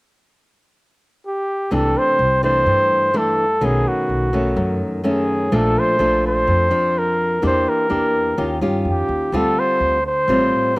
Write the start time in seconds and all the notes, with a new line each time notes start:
1.27 G4
1.71 C2 C3 E3 A3 D4 A4
1.98 C5
2.19 C2
2.43 E3 A3 D4 C5
2.66 G2
3.14 E3 A3 D4 A4
3.61 B1 B2 D#3 A3 C#4 G#4
3.88 F#4
4.09 B1
4.33 D#3 A3 C#4
4.56 F#2
5.04 D#3 A3 C#4 G#4
5.52 A#1 A#2 F3 A3 D4
5.56 A4
5.79 C5
5.99 A#1 F3 A3 D4
6.27 C5
6.47 F2
6.71 F3 D4
6.98 A#4
7.42 E2 E3 A#3 D4 G4
7.46 C5
7.69 A#4
7.90 E2 A#3 D4 G4
8.38 D#2 D#3 C#4 F4 G4
8.61 G2 C#4 F4 G4
8.85 F2 G4
9.08 D#2
9.32 D2 D3 G3 C4 F4 A4
9.59 C5
9.80 D2
10.07 C5
10.28 A1 A2 G3 C4 F4